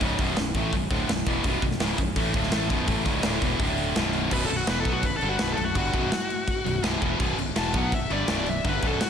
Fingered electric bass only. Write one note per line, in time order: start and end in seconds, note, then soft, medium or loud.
0.01 0.18 C#1 loud
0.19 0.36 B0 medium
0.38 0.54 B0 medium
0.55 0.72 A1 loud
0.73 0.90 B0 medium
0.91 1.07 D1 medium
1.09 1.26 B0 medium
1.26 1.43 E1 medium
1.44 1.61 B0 loud
1.62 1.79 B0 medium
1.81 1.98 C#1 loud
1.98 2.15 B0 medium
2.16 2.33 A1 loud
2.34 2.51 D1 loud
2.53 2.69 A1 medium
2.70 2.87 B0 medium
2.88 3.05 A1 loud
3.06 3.23 C#1 medium
3.25 3.41 D1 medium
3.42 3.59 E1 medium
3.60 3.93 D1 medium
3.96 4.29 B0 loud
4.32 4.49 B0 loud
4.50 4.67 B0 medium
4.68 4.85 E1 medium
4.85 5.02 B1 medium
5.03 5.20 B0 medium
5.23 5.39 G1 medium
5.41 5.57 B0 medium
5.58 5.75 B0 medium
5.75 5.92 G1 loud
5.94 6.11 B0 loud
6.66 6.83 B0 medium
6.83 7.00 B0 medium
7.02 7.19 E1 medium
7.20 7.37 B0 loud
7.38 7.55 B0 medium
7.56 7.73 E1 medium
7.74 7.91 B1 loud
7.92 8.09 B0 medium
8.10 8.27 G1 loud
8.28 8.45 B0 medium
8.47 8.63 B0 medium
8.65 8.81 G1 loud
8.83 9.00 B0 loud